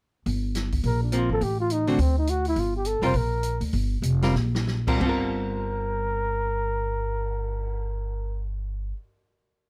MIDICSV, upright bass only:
0, 0, Header, 1, 2, 480
1, 0, Start_track
1, 0, Key_signature, -2, "minor"
1, 0, Tempo, 288046
1, 433, Time_signature, 4, 2, 24, 8
1, 5234, Tempo, 302267
1, 7154, Tempo, 335383
1, 14805, End_track
2, 0, Start_track
2, 0, Title_t, "Upright bass"
2, 0, Program_c, 0, 32
2, 434, Note_on_c, 0, 31, 81
2, 1345, Note_off_c, 0, 31, 0
2, 1391, Note_on_c, 0, 34, 79
2, 2110, Note_off_c, 0, 34, 0
2, 2152, Note_on_c, 0, 32, 64
2, 2332, Note_off_c, 0, 32, 0
2, 2346, Note_on_c, 0, 33, 82
2, 3260, Note_off_c, 0, 33, 0
2, 3305, Note_on_c, 0, 38, 92
2, 4217, Note_off_c, 0, 38, 0
2, 4264, Note_on_c, 0, 31, 82
2, 4987, Note_off_c, 0, 31, 0
2, 5024, Note_on_c, 0, 29, 73
2, 5208, Note_off_c, 0, 29, 0
2, 5222, Note_on_c, 0, 34, 81
2, 5930, Note_off_c, 0, 34, 0
2, 5973, Note_on_c, 0, 38, 71
2, 6152, Note_off_c, 0, 38, 0
2, 6173, Note_on_c, 0, 31, 82
2, 6623, Note_off_c, 0, 31, 0
2, 6631, Note_on_c, 0, 29, 79
2, 7104, Note_off_c, 0, 29, 0
2, 7139, Note_on_c, 0, 34, 88
2, 8033, Note_off_c, 0, 34, 0
2, 8086, Note_on_c, 0, 31, 84
2, 13678, Note_off_c, 0, 31, 0
2, 14805, End_track
0, 0, End_of_file